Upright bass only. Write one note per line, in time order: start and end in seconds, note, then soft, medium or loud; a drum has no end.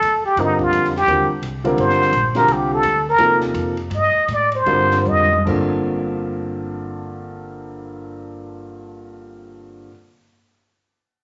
0.01 0.22 D#2 medium
0.23 muted upright bass stroke soft
0.36 0.70 G2 medium
0.71 1.06 F2 medium
1.07 1.27 D#2 medium
1.29 muted upright bass stroke soft
1.42 1.76 C2 medium
1.77 2.11 G1 medium
2.12 2.47 A#1 medium
2.47 2.82 C2 medium
2.83 3.17 D2 medium
3.18 3.53 D#2 medium
3.54 3.89 F2 medium
3.90 4.12 G2 medium
4.14 muted upright bass stroke soft
4.28 4.65 A2 medium
4.66 5.05 G2 medium
5.05 5.45 F2 medium
5.46 9.84 G1 medium